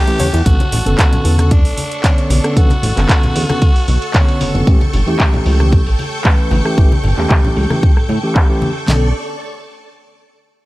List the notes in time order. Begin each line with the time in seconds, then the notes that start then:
Already playing: G4 A4 F#5 C#6
0.07 E3 A3 C#4 G4, closed hi-hat
0.19 E2 C#5, open hi-hat, high conga, cabasa
0.33 E2 E4, closed hi-hat, cabasa
0.46 B1 D3 B3 C#4 F#4 A4 C#6, kick, closed hi-hat
0.60 closed hi-hat, high conga
0.72 A1, open hi-hat, low conga
0.86 F#1 D3 B3 C#4 A4, closed hi-hat
0.99 F#4, kick, clap, closed hi-hat, high conga
1.13 closed hi-hat, low conga
1.25 E2, open hi-hat
1.38 D3 B3 C#4 A4, cross-stick, closed hi-hat, high conga
1.51 D4, kick, closed hi-hat
1.65 B1, open hi-hat
1.78 open hi-hat, high conga
1.92 closed hi-hat
2.04 D3 B3 C#4 C#5, kick, clap, closed hi-hat
2.18 closed hi-hat
2.30 B1 D4, open hi-hat, high conga
2.44 D3 B3 C#4 A4, cross-stick, closed hi-hat
2.56 B1 D3 B3 C#4 F#4 A4, kick, closed hi-hat
2.70 closed hi-hat, high conga
2.83 A1, open hi-hat, low conga
2.96 F#1 D3 B3 C#4 A4, clap, closed hi-hat
3.09 kick, clap, closed hi-hat, high conga
3.23 closed hi-hat, low conga
3.36 E2, open hi-hat
3.49 D3 B3 C#4 A4, cross-stick, closed hi-hat, high conga
3.62 kick, closed hi-hat
3.76 B1, open hi-hat
3.88 B1, open hi-hat, high conga
4.02 closed hi-hat
4.14 D3 B3 C#4 F#4 C#5, kick, clap, closed hi-hat
4.28 closed hi-hat
4.41 F#1, open hi-hat, high conga
4.54 F#1 D3 B3 C#4 A4, closed hi-hat
4.67 A1 E3 A3 C#4 G4 G5, kick, closed hi-hat
4.81 closed hi-hat, high conga
4.93 G1, open hi-hat, low conga
5.07 E2 E3 A3 C#4 G4, closed hi-hat
5.20 kick, clap, closed hi-hat, high conga
5.34 closed hi-hat, low conga
5.46 C#2, open hi-hat
5.59 E3 A3 C#4 G4, cross-stick, closed hi-hat, high conga
5.72 kick, closed hi-hat
5.86 A1, open hi-hat
5.99 open hi-hat, high conga
6.13 closed hi-hat
6.24 E3 A3 C#4 B4, kick, clap, closed hi-hat
6.39 closed hi-hat
6.51 A1, open hi-hat, high conga
6.65 E3 A3 C#4 G4, cross-stick, closed hi-hat
6.77 A1 E3 A3 C#4 G4, kick, closed hi-hat
6.92 closed hi-hat, high conga
7.04 G1, open hi-hat, low conga
7.17 E2 E3 A3 C#4 G4, clap, closed hi-hat
7.30 kick, clap, closed hi-hat, high conga
7.44 closed hi-hat, low conga
7.57 C#2, open hi-hat
7.70 E3 A3 C#4 G4, cross-stick, high conga
7.83 kick, closed hi-hat
7.97 A2, cross-stick, open hi-hat
8.09 A2, open hi-hat, high conga
8.23 E3 A3 C#4 G4, closed hi-hat
8.36 kick, clap, closed hi-hat
8.49 E3 A3 C#4 G4, closed hi-hat
8.62 open hi-hat, high conga
8.76 closed hi-hat
8.86 B1 D3 B3 C#4 A4 D5 C#6, snare, clap